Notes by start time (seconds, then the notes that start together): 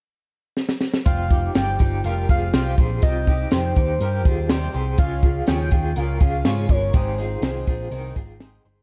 0.57 snare
0.69 snare
0.81 snare
0.94 snare
1.06 F1 F3 G3 C4 F4 F5, kick, closed hi-hat
1.30 G3 C4 D#4 F4 G4, kick, closed hi-hat
1.55 G1 F3 G3 C4 F4 G5, snare, closed hi-hat
1.79 G1 G3 C4 D#4 F4 G4, kick, closed hi-hat
2.04 F1 F3 G3 C4 F4 G4 A#4 F5, closed hi-hat
2.29 F1 G3 C4 F4 G#4 F5, kick, closed hi-hat
2.54 C2 F3 G3 C4 F4 G4 C5, snare, closed hi-hat
2.78 A#1 G3 C4 F4 G#4 C5, kick, closed hi-hat
3.02 C2 C3 D#3 G3 C4 F4 G4 D#5, kick, closed hi-hat
3.27 G3 C4 D#4 G4, kick, closed hi-hat
3.51 F2 C3 D#3 G3 C4 G4 C5, snare, closed hi-hat
3.76 D#2 G3 C4 D#4 G4, kick, closed hi-hat
4.00 G2 D#3 G3 C4 G4 A#4, closed hi-hat
4.25 D#2 G3 C4 F4 G4 G#4, kick, closed hi-hat
4.49 C3 D#3 G3 C4 G4 C5, snare, closed hi-hat
4.74 C2 G3 C4 G4 G#4 C5, closed hi-hat
4.98 C#2 C#3 G#3 C#4 F4 F5, kick, closed hi-hat
5.22 G#3 C#4 F4 G#4, kick, closed hi-hat
5.46 D#2 C#3 G#3 C#4 F4 G5, snare, closed hi-hat
5.71 D#2 G#3 C#4 F4 G#4, kick, closed hi-hat
5.96 C#2 C#3 G#3 C#4 F4 A#4 F5, closed hi-hat
6.20 C#2 G#3 C#4 F4 G#4, kick, closed hi-hat
6.45 G#2 C#3 G#3 C#4 F4 G#4 C#5, snare, closed hi-hat
6.69 G1 G#3 C#4 F4 A#4 C#5, kick, closed hi-hat
6.93 G#1 G#2 D#3 G#3 C4 D#4 G4 C5, kick, closed hi-hat
7.18 G#3 C4 D#4 F4 G#4, closed hi-hat
7.42 C2 G#2 D#3 G#3 C4, snare, closed hi-hat
7.46 D#4
7.67 A#1 G#3 C4 D#4 F4 G#4, kick, closed hi-hat
7.91 C2 D#3 G#3 C4 D#4 A#4, closed hi-hat
8.16 G#1 G#3 C4 D#4 F4 G#4, kick, closed hi-hat
8.40 G#2 D#3 G#3 C4 D#4 G#4 C5, snare, closed hi-hat
8.64 G1 G#3 C4 D#4 G#4 C5, closed hi-hat